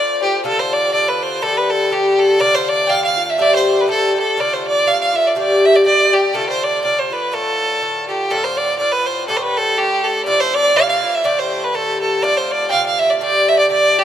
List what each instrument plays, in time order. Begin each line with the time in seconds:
Already playing: bouzouki D3 A3 F4 C5, fiddle D5
0.22 bouzouki A3 F4 C5, fiddle G4
0.44 bouzouki C3 D3 F4 A4, fiddle A4
0.59 fiddle C5
0.73 fiddle D5
0.92 bouzouki C3 D3 F4 A4, fiddle D5
1.08 fiddle B4
1.22 fiddle C5
1.42 bouzouki G2 D3 A3 G4, fiddle A4
1.57 fiddle B4
1.70 fiddle A4
1.90 bouzouki G2 D3 A3 G4, fiddle G4
2.19 fiddle A4
2.39 bouzouki C3 D3 A3 F4, fiddle D5
2.55 fiddle C5
2.69 fiddle D5
2.86 bouzouki C3 D3, fiddle F5 G5
2.90 bouzouki A3 F4
3.04 fiddle F5
3.16 bouzouki D3 A3 F4
3.30 fiddle E5
3.38 bouzouki G2 D3 A3 G4, fiddle D5
3.55 fiddle C5
3.80 fiddle B4
3.87 bouzouki G2 D3 A3 G4, fiddle A4
4.15 bouzouki D3 A3 G4
4.19 fiddle A4
4.37 bouzouki C3 D3 A3 F4, fiddle D5
4.53 fiddle C5
4.68 fiddle D5
4.86 bouzouki C3 D3 A3 F4, fiddle F5
5.01 fiddle F5
5.13 bouzouki D3 A3 F4, fiddle E5
5.27 fiddle D5
5.35 bouzouki G2 D3 A3 G4, fiddle D5
5.65 fiddle E5
5.75 fiddle D5
5.84 bouzouki G2 D3 A3 G4, fiddle D5
6.13 fiddle G4
6.33 bouzouki C3 D3 A3 F4, fiddle A4
6.49 fiddle C5
6.63 fiddle D5
6.83 bouzouki C3 D3 A3 F4, fiddle D5
6.99 fiddle C5
7.10 bouzouki D3 A3 F4, fiddle B4
7.32 bouzouki A2 D3 A3 F4, fiddle A4
7.81 bouzouki A2 D3 A3 F4
8.08 bouzouki D3 A3 F4, fiddle G4
8.30 bouzouki A2 D3 C4 F4, fiddle A4
8.44 fiddle C5
8.57 fiddle D5
8.78 bouzouki A2 D3 C4 F4, fiddle D5
8.92 fiddle B4
9.06 fiddle C5
9.28 bouzouki A2 D3 A3 G4, fiddle A4
9.37 fiddle C5
9.42 fiddle B4
9.57 fiddle A4
9.77 bouzouki A2 D3 A3 G4, fiddle G4
10.05 fiddle A4
10.25 bouzouki C3 F3 A3 E4, fiddle D5
10.40 fiddle C5
10.54 fiddle D5
10.74 bouzouki C3 F3 A3 E4, fiddle F5
10.89 fiddle F5
11.02 bouzouki F3 A3 E4
11.15 fiddle E5
11.24 bouzouki A2 D3 A3 G4, fiddle D5
11.39 fiddle C5
11.64 fiddle B4
11.73 bouzouki A2 D3 A3 G4, fiddle A4
12.01 fiddle A4
12.22 bouzouki C3 D3 A3 F4, fiddle D5
12.37 fiddle C5
12.51 fiddle D5
12.69 bouzouki C3 D3 A3, fiddle F5 G5
12.73 bouzouki F4
12.86 fiddle F5
12.99 fiddle E5
13.10 fiddle D5
13.21 bouzouki G2 D3 A3 G4, fiddle D5
13.48 fiddle E5
13.59 fiddle D5
13.69 bouzouki G2 D3 A3 G4, fiddle D5
13.99 fiddle G4